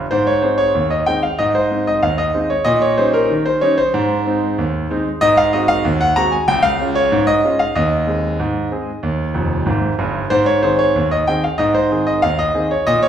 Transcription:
0.11 0.39 G#2 medium
0.11 0.27 C5 medium
0.27 0.43 C#5 medium
0.42 0.60 G#3 soft
0.42 0.61 C4 soft
0.42 0.61 D#4 soft
0.42 0.58 C5 medium
0.58 0.90 C#5 medium
0.75 1.02 D#2 medium
0.90 1.07 D#5 medium
1.06 1.25 G#3 soft
1.06 1.25 C4 soft
1.06 1.25 D#4 soft
1.06 1.23 G5 medium
1.23 1.39 F5 medium
1.39 1.66 G#2 medium
1.39 1.55 D#5 medium
1.55 1.87 C5 medium
1.71 1.88 G#3 soft
1.71 1.88 C4 soft
1.71 1.89 D#4 soft
1.87 2.03 D#5 medium
2.03 2.30 D#2 medium
2.03 2.18 F5 medium
2.18 2.50 D#5 medium
2.34 2.52 G#3 soft
2.34 2.52 C4 soft
2.34 2.52 D#4 soft
2.50 2.66 C#5 medium
2.65 2.93 A#2 medium
2.65 2.81 D#5 loud
2.82 2.98 C#5 medium
2.98 3.16 G3 soft
2.98 3.16 C#4 soft
2.98 3.16 D#4 soft
2.98 3.14 C5 medium
3.13 3.46 A#4 medium
3.30 3.57 D#3 medium
3.46 3.62 C5 medium
3.61 3.79 G3 soft
3.61 3.80 C#4 medium
3.61 3.80 D#4 medium
3.61 3.78 C#5 medium
3.78 5.21 C5 medium
3.94 4.21 G#2 medium
4.26 4.44 G#3 soft
4.26 4.44 C4 soft
4.26 4.44 D#4 medium
4.58 4.85 D#2 medium
4.90 5.08 G#3 medium
4.90 5.07 C4 soft
4.90 5.08 D#4 medium
5.21 5.48 G#2 medium
5.21 5.37 D#5 loud
5.37 5.53 F5 loud
5.53 5.71 G#3 soft
5.53 5.71 C4 soft
5.53 5.71 F#4 medium
5.53 5.69 D#5 medium
5.68 6.00 F5 loud
5.85 6.12 D#2 medium
6.01 6.16 F#5 loud
6.16 6.34 G#3 medium
6.16 6.35 C4 soft
6.16 6.35 F#4 medium
6.16 6.32 A#5 loud
6.32 6.48 G#5 medium
6.48 6.75 C#2 medium
6.48 6.64 G5 loud
6.63 6.95 F5 loud
6.80 6.98 G#3 soft
6.80 6.98 C#4 soft
6.80 6.98 F4 medium
6.95 7.27 C#5 loud
7.12 7.39 G#2 medium
7.27 7.59 D#5 loud
7.45 7.62 G#3 soft
7.45 7.62 C#4 soft
7.45 7.62 F4 medium
7.59 7.75 F5 medium
7.75 8.03 D#2 medium
7.75 9.67 D#5 medium
8.07 8.25 G#3 soft
8.07 8.25 C4 soft
8.07 8.25 G#4 soft
8.40 8.67 G#2 medium
8.72 8.89 G#3 soft
8.72 8.89 C4 soft
8.72 8.90 G#4 soft
9.03 9.30 D#2 medium
9.34 9.58 F1 medium
9.34 9.59 F2 medium
9.66 9.90 G#1 medium
9.66 9.91 G#2 medium
9.98 10.23 G1 medium
9.98 10.23 G2 medium
10.30 10.58 G#2 medium
10.30 10.47 C5 loud
10.46 10.63 C#5 medium
10.63 10.81 D#3 soft
10.63 10.81 C4 soft
10.63 10.81 G#4 soft
10.63 10.79 C5 medium
10.79 11.11 C#5 medium
10.96 11.23 D#2 medium
11.11 11.27 D#5 medium
11.27 11.45 D#3 soft
11.27 11.46 C4 soft
11.27 11.46 G#4 medium
11.27 11.43 G5 medium
11.44 11.59 F5 medium
11.58 11.86 G#2 medium
11.58 11.74 D#5 medium
11.74 12.07 C5 medium
11.91 12.08 D#3 soft
11.91 12.09 C4 soft
11.91 12.09 G#4 soft
12.07 12.23 D#5 medium
12.22 12.50 D#2 medium
12.22 12.39 F5 loud
12.39 12.71 D#5 medium
12.54 12.72 D#3 soft
12.54 12.72 C4 soft
12.54 12.72 G#4 medium
12.71 12.87 C#5 medium
12.87 13.09 A#2 medium
12.87 13.03 D#5 loud
13.03 13.09 C#5 medium

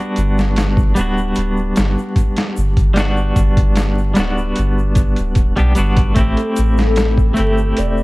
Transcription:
0.00 0.91 G3 medium
0.00 0.92 B3 medium
0.00 0.93 D4 medium
0.00 0.94 F#4 medium
0.16 0.93 G1 loud
0.16 closed hi-hat medium
0.16 shaker medium
0.38 snare medium
0.38 shaker soft
0.56 snare loud
0.56 closed hi-hat medium
0.56 shaker soft
0.77 kick medium
0.77 shaker soft
0.95 1.33 D1 medium
0.95 2.91 G3 medium
0.95 2.92 B3 medium
0.95 2.93 D4 medium
0.95 closed hi-hat medium
0.95 shaker medium
1.01 2.94 F#4 medium
1.17 shaker soft
1.35 1.72 D1 medium
1.35 closed hi-hat medium
1.35 shaker soft
1.57 shaker soft
1.76 1.96 G1 medium
1.76 snare loud
1.76 closed hi-hat medium
1.76 shaker medium
1.98 shaker soft
2.16 kick medium
2.16 closed hi-hat medium
2.16 shaker soft
2.36 snare loud
2.36 closed hi-hat medium
2.36 shaker soft
2.57 2.76 G1 medium
2.57 shaker medium
2.77 3.33 G1 medium
2.77 kick medium
2.77 closed hi-hat medium
2.77 shaker soft
2.94 4.11 G3 medium
2.94 4.12 B3 medium
2.94 4.13 D4 medium
2.94 snare loud
2.94 closed hi-hat medium
2.94 shaker soft
3.00 4.14 F#4 loud
3.17 shaker soft
3.36 4.13 G1 loud
3.36 kick medium
3.36 closed hi-hat medium
3.36 shaker medium
3.57 kick loud
3.57 closed hi-hat medium
3.57 shaker soft
3.76 snare loud
3.76 closed hi-hat medium
3.76 shaker medium
3.98 shaker soft
4.14 4.53 D1 medium
4.14 5.52 G3 medium
4.14 5.53 B3 medium
4.14 snare medium
4.14 closed hi-hat medium
4.14 shaker medium
4.18 5.54 D4 medium
4.18 5.55 F#4 medium
4.38 shaker soft
4.56 5.15 G1 medium
4.56 closed hi-hat medium
4.56 shaker soft
4.78 shaker soft
4.95 kick loud
4.95 closed hi-hat medium
4.95 shaker medium
5.16 5.53 D1 medium
5.16 closed hi-hat soft
5.16 shaker soft
5.35 kick loud
5.35 closed hi-hat medium
5.35 shaker soft
5.56 5.75 B1 medium
5.56 5.71 G3 medium
5.56 5.72 B3 medium
5.56 5.72 D4 medium
5.56 5.73 G4 loud
5.56 closed hi-hat soft
5.56 shaker soft
5.75 6.13 G1 medium
5.75 6.11 G3 medium
5.75 6.12 B3 medium
5.75 6.13 D4 medium
5.75 6.13 F#4 loud
5.75 closed hi-hat medium
5.75 shaker medium
5.97 kick loud
5.97 closed hi-hat medium
5.97 shaker soft
6.14 6.35 A1 loud
6.14 7.31 A3 medium
6.14 7.32 C4 medium
6.14 7.33 E4 medium
6.14 kick medium
6.14 closed hi-hat medium
6.14 shaker soft
6.20 7.34 G4 loud
6.20 7.79 A4 loud
6.37 closed hi-hat soft
6.37 shaker soft
6.56 7.34 A1 loud
6.56 closed hi-hat medium
6.56 shaker loud
6.77 snare medium
6.77 shaker soft
6.96 snare loud
6.96 closed hi-hat medium
6.96 shaker soft
7.18 kick medium
7.18 shaker soft
7.34 8.03 A3 medium
7.34 8.03 C4 medium
7.34 closed hi-hat medium
7.34 shaker medium
7.38 7.73 G1 medium
7.38 8.03 E4 medium
7.38 8.03 G4 medium
7.58 shaker soft
7.77 8.03 E1 medium
7.77 8.03 D5 loud
7.77 closed hi-hat medium
7.77 shaker soft
7.97 shaker soft

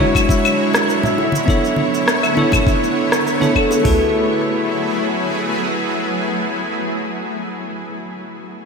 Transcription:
0.00 1.15 D3 medium
0.00 1.14 F#3 medium
0.00 1.15 G#3 medium
0.00 1.20 G#3 medium
0.00 1.19 D4 medium
0.00 1.20 E4 medium
0.00 3.81 E4 medium
0.00 0.29 E4 medium
0.00 1.19 F#4 medium
0.00 1.14 C#5 medium
0.00 1.20 C#5 loud
0.00 1.03 E5 medium
0.00 kick medium
0.15 kick loud
0.15 cabasa medium
0.15 claves medium
0.29 1.18 E4 medium
0.29 kick loud
0.29 cabasa medium
0.45 cabasa soft
0.45 claves medium
0.73 cross-stick medium
0.73 high bongo soft
0.73 cabasa medium
0.90 cabasa medium
1.03 2.22 E5 medium
1.03 low conga medium
1.03 cabasa soft
1.17 3.83 D3 medium
1.17 3.82 A3 medium
1.17 3.82 B3 medium
1.17 1.48 E4 medium
1.17 3.82 C#5 medium
1.17 high bongo soft
1.32 high conga medium
1.32 cabasa medium
1.46 2.32 B3 medium
1.46 2.33 D4 medium
1.46 2.36 E4 medium
1.46 2.34 E4 medium
1.46 2.34 A4 medium
1.46 kick loud
1.46 cabasa soft
1.50 2.34 C#5 medium
1.65 cabasa soft
1.76 high conga medium
1.94 cabasa medium
2.08 cross-stick medium
2.08 cabasa medium
2.22 3.95 E5 medium
2.22 cabasa soft
2.22 claves medium
2.35 3.08 B3 medium
2.35 3.08 D4 medium
2.35 2.66 E4 medium
2.35 3.09 E4 medium
2.35 3.09 A4 medium
2.35 3.10 C#5 medium
2.35 high bongo soft
2.35 high conga medium
2.52 kick medium
2.52 low conga medium
2.52 cabasa medium
2.52 claves medium
2.67 3.83 E4 medium
2.67 kick loud
2.67 cabasa soft
2.84 cabasa soft
3.12 5.03 C#5 medium
3.12 cross-stick medium
3.12 cabasa medium
3.27 cabasa soft
3.40 3.81 B3 medium
3.40 3.81 D4 medium
3.40 3.82 E4 medium
3.40 3.54 A4 medium
3.40 3.82 A4 medium
3.40 3.82 C#5 medium
3.40 high conga medium
3.40 cabasa soft
3.54 5.74 A4 medium
3.54 kick medium
3.54 claves medium
3.71 high bongo medium
3.71 cabasa medium
3.82 6.99 F#3 medium
3.82 7.67 A3 medium
3.82 6.99 A3 medium
3.82 6.99 B3 medium
3.82 7.68 E4 medium
3.82 6.45 E4 medium
3.82 6.98 E4 medium
3.82 7.68 F#4 medium
3.82 6.99 G#4 medium
3.82 kick loud
3.82 floor tom medium
3.82 open hi-hat medium
3.86 7.69 G#4 medium
3.86 7.70 B4 medium

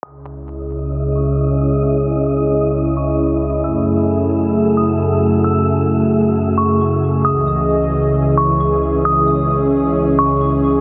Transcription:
0.03 3.61 C#2 medium
0.03 3.61 C#3 medium
0.03 3.61 C#4 medium
0.03 7.21 E4 medium
0.03 3.61 E4 medium
0.03 3.61 G#4 medium
0.03 3.61 D#5 medium
0.03 0.46 D#6 medium
1.16 1.79 C#6 medium
1.83 2.92 D#6 loud
2.97 3.18 C#6 medium
3.64 7.21 F#2 medium
3.64 10.81 C#3 medium
3.64 7.21 A3 medium
3.64 7.21 F#4 medium
3.64 10.81 G#4 medium
3.64 7.21 E5 medium
3.64 4.07 E6 medium
4.77 5.41 D#6 medium
5.44 6.53 E6 loud
6.58 7.21 C#6 medium
7.25 10.81 C#2 medium
7.25 10.81 E3 medium
7.25 10.81 C#4 medium
7.25 10.81 E4 medium
7.25 10.81 D#5 medium
7.25 9.04 D#5 medium
7.25 7.67 D#6 medium
8.37 9.01 C#6 medium
9.05 10.81 C#4 medium
9.05 10.14 D#6 medium
10.19 10.40 C#6 medium

